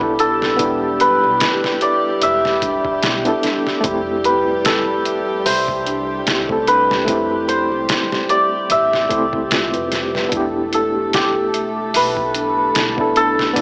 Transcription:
0.00 0.56 B1 medium
0.00 10.34 G3 medium
0.00 0.54 B3 medium
0.00 0.19 D4 medium
0.00 0.55 D4 medium
0.00 0.60 E4 medium
0.00 0.56 E4 medium
0.00 1.23 G4 loud
0.00 1.31 G4 medium
0.00 10.34 G4 medium
0.00 0.19 A4 medium
0.00 0.56 A4 medium
0.00 1.00 B4 medium
0.00 1.82 E5 medium
0.00 kick medium
0.19 0.58 D4 medium
0.19 3.13 A4 loud
0.19 closed hi-hat medium
0.42 snare medium
0.56 1.18 E1 medium
0.56 2.97 B3 loud
0.56 2.98 D4 medium
0.56 1.20 E4 medium
0.56 kick loud
0.56 closed hi-hat medium
0.62 3.00 E4 medium
0.62 3.01 G4 loud
1.00 3.74 B4 medium
1.00 closed hi-hat medium
1.23 1.39 B1 medium
1.23 1.40 G4 medium
1.40 1.61 E4 medium
1.40 snare loud
1.40 closed hi-hat loud
1.63 1.80 G4 loud
1.63 snare medium
1.81 4.28 D5 medium
1.81 2.03 E5 medium
1.81 closed hi-hat medium
2.22 2.99 E1 medium
2.22 2.60 E5 loud
2.22 4.53 E5 loud
2.22 closed hi-hat medium
2.45 snare soft
2.62 3.01 D4 medium
2.62 kick loud
2.62 closed hi-hat medium
2.85 kick loud
3.03 3.23 B1 loud
3.03 3.42 E4 medium
3.03 snare loud
3.03 closed hi-hat medium
3.25 3.79 B3 medium
3.25 3.80 D4 medium
3.25 3.80 E4 medium
3.25 3.81 A4 medium
3.25 closed hi-hat soft
3.43 3.82 D4 medium
3.43 snare soft
3.43 closed hi-hat medium
3.67 snare soft
3.81 5.43 F1 loud
3.81 6.21 A3 loud
3.81 6.23 C4 medium
3.81 4.45 E4 loud
3.81 kick loud
3.81 closed hi-hat medium
3.86 6.24 E4 medium
3.86 6.25 G4 loud
4.24 5.52 B4 medium
4.24 closed hi-hat medium
4.47 4.64 G4 medium
4.65 4.85 E4 medium
4.65 7.58 A4 medium
4.65 snare loud
4.65 closed hi-hat medium
4.87 5.04 G4 medium
5.05 5.27 E5 medium
5.05 closed hi-hat medium
5.46 6.24 C2 loud
5.46 6.74 C5 medium
5.46 5.85 E5 loud
5.46 open hi-hat medium
5.68 kick medium
5.86 6.25 D4 medium
5.86 closed hi-hat medium
6.27 7.05 C2 medium
6.27 6.66 E4 medium
6.27 snare loud
6.27 closed hi-hat medium
6.49 7.03 A3 medium
6.49 7.04 C4 medium
6.49 7.04 E4 medium
6.49 7.05 A4 medium
6.49 kick medium
6.67 7.06 D4 medium
6.67 7.54 B4 loud
6.67 closed hi-hat medium
6.91 snare medium
7.05 7.67 F1 loud
7.05 9.05 A3 medium
7.05 9.07 C4 medium
7.05 7.69 E4 medium
7.05 kick loud
7.05 closed hi-hat medium
7.10 9.08 E4 medium
7.10 9.09 G4 loud
7.48 10.12 C5 loud
7.48 closed hi-hat medium
7.71 7.87 C2 medium
7.71 7.88 G4 medium
7.89 8.09 E4 medium
7.89 snare loud
7.89 closed hi-hat medium
8.11 8.29 G4 loud
8.11 snare medium
8.29 10.76 D5 loud
8.29 8.51 E5 medium
8.29 closed hi-hat medium
8.70 9.06 A1 medium
8.70 8.90 E5 loud
8.70 11.01 E5 loud
8.70 closed hi-hat medium
8.93 snare soft
9.09 9.69 C2 medium
9.09 9.36 A3 medium
9.09 9.37 C4 medium
9.09 9.37 E4 medium
9.09 9.38 C5 loud
9.09 9.31 E5 medium
9.09 kick medium
9.09 closed hi-hat medium
9.33 kick loud
9.51 9.72 F4 loud
9.51 snare loud
9.51 closed hi-hat medium
9.74 10.29 F1 medium
9.74 9.91 B4 medium
9.74 closed hi-hat soft
9.92 10.13 G4 medium
9.92 snare soft
9.92 closed hi-hat medium
10.14 10.31 B4 medium
10.14 snare soft
10.29 11.91 E1 medium
10.29 13.62 A3 medium
10.29 12.70 B3 medium
10.29 12.71 D4 medium
10.29 10.93 E4 loud
10.29 13.62 A4 medium
10.29 kick loud
10.29 closed hi-hat medium
10.34 12.72 E4 medium
10.34 12.74 G4 loud
10.73 13.17 A4 medium
10.73 closed hi-hat medium
10.95 11.12 G4 loud
11.13 11.33 E4 medium
11.13 13.62 G4 medium
11.13 snare loud
11.13 closed hi-hat medium
11.36 11.53 G4 loud
11.54 11.75 E5 medium
11.54 closed hi-hat medium
11.94 12.72 B1 medium
11.94 13.62 B4 medium
11.94 12.33 E5 loud
11.94 open hi-hat medium
12.17 kick medium
12.34 12.74 D4 medium
12.34 closed hi-hat medium
12.75 13.53 B1 medium
12.75 13.14 E4 medium
12.75 snare loud
12.75 closed hi-hat medium
12.97 13.52 B3 medium
12.97 13.52 D4 medium
12.97 13.53 E4 medium
12.97 kick loud
13.01 13.54 A4 loud
13.16 13.55 D4 medium
13.16 13.62 A4 loud
13.16 closed hi-hat medium
13.39 snare medium
13.53 13.62 E1 loud
13.53 13.62 B3 medium
13.53 13.62 D4 medium
13.53 13.62 E4 loud
13.53 kick loud
13.53 closed hi-hat medium

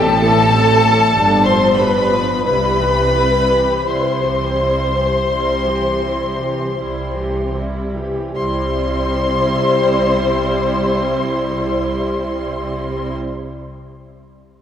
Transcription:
0.00 1.00 A1 loud
0.00 1.00 A2 loud
0.00 0.21 A3 medium
0.00 0.21 C4 medium
0.00 1.46 A4 loud
0.00 1.46 A5 loud
0.23 0.53 E3 medium
0.23 0.53 A3 medium
0.54 0.82 A3 medium
0.54 0.84 C4 medium
0.83 1.15 E3 medium
0.83 1.14 A3 medium
1.14 2.29 G1 loud
1.14 2.29 G2 loud
1.14 1.44 G3 medium
1.14 1.44 D4 medium
1.45 1.78 F3 medium
1.45 1.78 B3 medium
1.45 1.77 C5 loud
1.45 1.78 C6 loud
1.77 2.11 G3 medium
1.77 2.11 D4 medium
1.77 2.44 B4 loud
1.77 2.44 B5 medium
2.11 2.46 F3 medium
2.11 2.46 B3 medium
2.45 3.70 C2 medium
2.45 3.70 C3 medium
2.45 2.78 G3 medium
2.45 2.78 E4 medium
2.45 3.83 B4 loud
2.45 3.83 B5 loud
2.81 3.16 E3 medium
2.81 3.16 G4 medium
3.16 3.51 G3 medium
3.16 3.51 E4 medium
3.51 3.87 E3 medium
3.51 3.87 G4 medium
3.86 5.13 C2 medium
3.86 5.13 C3 medium
3.86 4.20 G3 medium
3.86 4.19 E4 medium
3.86 7.53 C5 medium
3.86 7.57 C6 medium
4.22 4.58 E3 medium
4.22 4.58 G4 medium
4.57 4.93 G3 medium
4.57 4.93 E4 medium
4.94 5.30 E3 medium
4.94 5.30 G4 medium
5.29 6.61 C2 medium
5.29 6.61 C3 medium
5.29 5.64 G3 medium
5.29 5.64 E4 medium
5.66 6.04 E3 medium
5.66 6.04 G4 medium
6.03 6.41 G3 soft
6.03 6.41 E4 medium
6.40 6.79 E3 medium
6.40 6.79 G4 soft
6.78 8.18 C2 medium
6.78 8.17 C3 medium
6.78 7.14 G3 medium
6.78 7.15 E4 medium
7.17 7.57 E3 medium
7.17 7.57 G4 soft
7.56 7.96 G3 medium
7.56 7.96 E4 medium
7.96 8.36 E3 medium
7.96 8.36 G4 medium
8.35 13.17 C2 medium
8.35 13.16 C3 medium
8.35 13.16 G3 medium
8.35 13.16 E4 medium
8.35 13.17 C5 medium
8.35 13.17 C6 loud

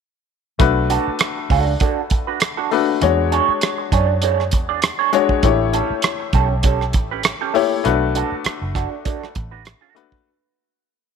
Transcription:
0.59 0.97 B1 loud
0.59 1.46 A3 medium
0.59 1.46 D4 medium
0.59 1.46 F#4 medium
0.59 1.47 B4 medium
0.59 kick loud
0.59 closed hi-hat medium
0.90 1.09 D4 medium
0.90 1.09 F#4 medium
0.90 1.10 A4 medium
0.90 closed hi-hat medium
1.08 muted fingered electric bass stroke soft
1.19 cross-stick loud
1.19 closed hi-hat medium
1.37 muted clean electric guitar stroke soft
1.50 1.74 C#2 medium
1.50 1.71 D4 medium
1.50 1.67 F#4 medium
1.50 1.66 A4 medium
1.50 kick medium
1.50 open hi-hat soft
1.67 muted clean electric guitar stroke soft
1.80 2.00 D4 medium
1.80 2.00 F#4 medium
1.80 2.01 A4 medium
1.80 kick medium
1.80 closed hi-hat medium
2.10 muted clean electric guitar stroke soft
2.10 kick medium
2.10 closed hi-hat medium
2.27 2.40 D4 soft
2.27 2.41 F#4 soft
2.27 2.40 B4 soft
2.40 muted clean electric guitar stroke soft
2.40 cross-stick loud
2.40 closed hi-hat medium
2.57 2.71 D4 medium
2.57 2.71 F#4 medium
2.57 2.72 A4 medium
2.71 2.94 A3 medium
2.71 2.94 D4 medium
2.71 2.94 F#4 medium
2.71 2.94 B4 medium
2.71 muted clean electric guitar stroke soft
2.71 open hi-hat soft
2.88 muted clean electric guitar stroke soft
3.01 3.39 E2 loud
3.01 3.88 G#3 medium
3.01 3.88 D4 medium
3.01 3.88 F#4 medium
3.01 3.89 C#5 medium
3.01 closed hi-hat medium
3.32 3.51 D4 medium
3.32 3.52 G#4 medium
3.32 3.52 C#5 medium
3.32 closed hi-hat medium
3.48 muted fingered electric bass stroke soft
3.61 cross-stick loud
3.61 closed hi-hat medium
3.78 muted clean electric guitar stroke soft
3.92 4.53 F#2 medium
3.92 4.11 D4 medium
3.92 4.09 G#4 medium
3.92 4.08 C#5 medium
3.92 kick medium
3.92 closed hi-hat medium
4.09 muted clean electric guitar stroke soft
4.22 4.42 D4 medium
4.22 4.42 G#4 medium
4.22 4.42 C#5 medium
4.22 closed hi-hat medium
4.40 cross-stick soft
4.51 4.90 E2 medium
4.51 muted clean electric guitar stroke soft
4.51 kick medium
4.51 closed hi-hat medium
4.69 4.81 D4 soft
4.69 4.82 G#4 soft
4.69 4.82 D5 medium
4.82 muted clean electric guitar stroke soft
4.82 cross-stick loud
4.82 closed hi-hat medium
4.99 5.12 D4 medium
4.99 5.12 G#4 medium
4.99 5.13 C#5 medium
5.13 5.35 G#3 medium
5.13 5.36 D4 medium
5.13 5.36 F#4 medium
5.13 5.36 C#5 medium
5.13 muted clean electric guitar stroke soft
5.13 closed hi-hat medium
5.29 muted clean electric guitar stroke soft
5.29 kick medium
5.43 5.80 A1 medium
5.43 6.30 A3 medium
5.43 6.30 E4 medium
5.43 6.30 G4 medium
5.43 6.30 C#5 medium
5.43 kick medium
5.43 closed hi-hat medium
5.73 5.92 C#4 medium
5.73 5.93 G4 medium
5.73 5.93 A4 medium
5.73 closed hi-hat medium
5.90 muted fingered electric bass stroke soft
6.02 cross-stick loud
6.02 closed hi-hat medium
6.20 muted clean electric guitar stroke soft
6.33 6.94 B1 medium
6.33 6.53 C#4 medium
6.33 6.50 G4 medium
6.33 6.49 A4 medium
6.33 kick medium
6.33 closed hi-hat medium
6.50 muted clean electric guitar stroke soft
6.63 6.83 C#4 medium
6.63 6.84 G4 medium
6.63 6.84 A4 medium
6.63 kick medium
6.63 closed hi-hat medium
6.81 cross-stick soft
6.93 7.31 A1 medium
6.93 muted clean electric guitar stroke soft
6.93 kick medium
6.93 closed hi-hat medium
7.11 7.24 C#4 soft
7.11 7.24 G4 soft
7.11 7.24 B4 medium
7.23 muted clean electric guitar stroke soft
7.23 cross-stick loud
7.23 closed hi-hat medium
7.41 7.54 C#4 medium
7.41 7.54 G4 medium
7.41 7.55 A4 medium
7.54 7.76 A3 medium
7.54 7.77 E4 medium
7.54 7.77 G4 medium
7.54 7.77 C#5 medium
7.54 muted clean electric guitar stroke soft
7.54 open hi-hat soft
7.72 muted clean electric guitar stroke soft
7.84 8.22 B1 medium
7.84 8.71 A3 medium
7.84 8.71 D4 medium
7.84 8.71 F#4 medium
7.84 8.71 B4 medium
7.84 closed hi-hat medium
8.15 8.34 D4 medium
8.15 8.35 F#4 medium
8.15 8.35 A4 medium
8.15 closed hi-hat medium
8.32 muted fingered electric bass stroke soft
8.44 muted fingered electric bass stroke soft
8.44 cross-stick medium
8.44 closed hi-hat medium
8.62 8.85 F#1 medium
8.62 muted clean electric guitar stroke soft
8.75 8.94 D4 medium
8.75 8.92 F#4 medium
8.75 8.90 A4 medium
8.75 kick medium
8.75 cross-stick soft
8.75 closed hi-hat medium
8.92 muted clean electric guitar stroke soft
9.05 9.24 D4 medium
9.05 9.25 F#4 medium
9.05 9.25 A4 medium
9.05 kick medium
9.05 closed hi-hat medium
9.24 cross-stick soft
9.35 9.73 A1 medium
9.35 muted clean electric guitar stroke soft
9.35 kick medium
9.35 closed hi-hat medium
9.51 9.64 D4 soft
9.51 9.65 F#4 soft
9.51 9.65 B4 soft
9.65 muted clean electric guitar stroke soft
9.65 cross-stick loud
9.65 closed hi-hat medium
9.81 9.94 D4 medium
9.81 9.95 F#4 medium
9.81 9.96 A4 medium
9.95 10.18 A3 medium
9.95 10.18 D4 medium
9.95 10.18 F#4 medium
9.95 10.18 B4 medium
9.95 muted clean electric guitar stroke soft
9.95 closed hi-hat medium
10.12 muted clean electric guitar stroke soft
10.12 kick medium

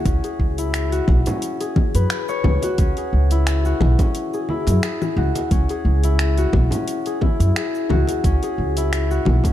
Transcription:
0.00 0.58 E4 medium
0.00 0.92 F#4 medium
0.00 0.24 G#4 medium
0.05 0.17 C#2 medium
0.05 1.26 C#4 medium
0.05 kick loud
0.05 open hi-hat medium
0.05 shaker medium
0.24 1.60 G#4 medium
0.24 open hi-hat soft
0.24 shaker soft
0.39 0.99 C#2 medium
0.39 kick medium
0.58 3.19 E4 medium
0.58 open hi-hat soft
0.58 shaker medium
0.74 finger snap medium
0.74 open hi-hat medium
0.74 shaker medium
0.92 2.63 F#4 medium
0.92 open hi-hat soft
0.92 shaker soft
1.08 1.20 B1 medium
1.08 kick loud
1.08 muted conga medium
1.08 high conga medium
1.08 low conga medium
1.26 2.79 C#4 medium
1.26 open hi-hat soft
1.26 low conga loud
1.26 shaker medium
1.42 open hi-hat medium
1.42 shaker medium
1.61 2.97 G#4 medium
1.61 open hi-hat soft
1.61 shaker soft
1.76 kick loud
1.76 high conga medium
1.76 low conga medium
1.95 2.05 F#2 medium
1.95 4.00 B4 medium
1.95 open hi-hat soft
1.95 shaker medium
2.10 finger snap loud
2.10 open hi-hat medium
2.10 shaker medium
2.28 4.20 C#5 loud
2.28 shaker soft
2.44 2.56 C#2 loud
2.44 muted conga soft
2.44 low conga medium
2.62 3.65 F#4 medium
2.62 open hi-hat soft
2.62 muted conga medium
2.62 shaker medium
2.78 2.90 C#2 loud
2.78 3.99 C#4 medium
2.78 kick loud
2.78 open hi-hat medium
2.78 shaker medium
2.97 4.33 G#4 medium
2.97 open hi-hat soft
2.97 shaker soft
3.13 3.72 C#2 medium
3.31 4.49 E4 medium
3.31 open hi-hat soft
3.31 shaker medium
3.47 finger snap loud
3.47 open hi-hat medium
3.47 shaker medium
3.65 5.17 F#4 medium
3.65 shaker soft
3.81 3.92 B1 medium
3.81 muted conga medium
3.81 high conga medium
3.81 low conga medium
3.99 5.51 C#4 medium
3.99 kick loud
3.99 open hi-hat soft
3.99 low conga medium
3.99 shaker medium
4.15 open hi-hat medium
4.15 shaker medium
4.33 4.83 G#4 medium
4.33 shaker soft
4.49 6.04 E4 medium
4.49 high conga medium
4.67 4.77 F#2 medium
4.67 open hi-hat soft
4.67 muted conga medium
4.67 shaker medium
4.83 5.70 G#4 medium
4.83 finger snap medium
4.83 open hi-hat medium
4.83 shaker medium
5.02 low conga medium
5.02 shaker soft
5.17 5.29 C#2 loud
5.17 6.38 F#4 medium
5.35 open hi-hat soft
5.35 muted conga medium
5.35 high conga medium
5.35 shaker medium
5.51 5.63 C#2 medium
5.51 6.72 C#4 medium
5.51 kick loud
5.51 open hi-hat medium
5.51 shaker medium
5.69 7.06 G#4 medium
5.69 open hi-hat soft
5.69 shaker soft
5.85 6.44 C#2 medium
6.04 7.22 E4 medium
6.04 open hi-hat soft
6.04 shaker medium
6.19 finger snap loud
6.19 open hi-hat medium
6.19 shaker medium
6.38 7.90 F#4 medium
6.38 open hi-hat soft
6.38 shaker soft
6.53 6.65 B1 medium
6.53 kick loud
6.53 muted conga medium
6.53 high conga medium
6.53 low conga medium
6.71 8.24 C#4 medium
6.71 open hi-hat soft
6.71 low conga medium
6.71 shaker medium
6.88 open hi-hat medium
6.88 shaker medium
7.06 7.56 G#4 medium
7.06 open hi-hat soft
7.06 shaker soft
7.21 8.77 E4 medium
7.21 kick loud
7.21 high conga medium
7.21 low conga medium
7.40 7.50 F#2 medium
7.40 open hi-hat soft
7.40 shaker medium
7.56 8.43 G#4 medium
7.56 finger snap loud
7.56 open hi-hat medium
7.56 shaker medium
7.75 shaker soft
7.89 8.02 C#2 loud
7.89 9.10 F#4 medium
7.89 muted conga soft
7.89 low conga medium
8.07 open hi-hat soft
8.07 muted conga medium
8.07 shaker medium
8.24 8.36 C#2 loud
8.24 9.44 C#4 medium
8.24 kick loud
8.24 open hi-hat medium
8.24 shaker medium
8.43 9.53 G#4 medium
8.43 open hi-hat soft
8.43 shaker soft
8.58 9.17 C#2 medium
8.77 9.53 E4 medium
8.77 open hi-hat soft
8.77 shaker medium
8.93 finger snap loud
8.93 open hi-hat medium
8.93 shaker medium
9.11 9.53 F#4 medium
9.11 shaker soft
9.25 9.38 B1 loud
9.25 muted conga medium
9.25 high conga medium
9.25 low conga medium
9.44 9.53 C#4 medium
9.44 kick loud
9.44 open hi-hat soft
9.44 low conga medium
9.44 shaker medium

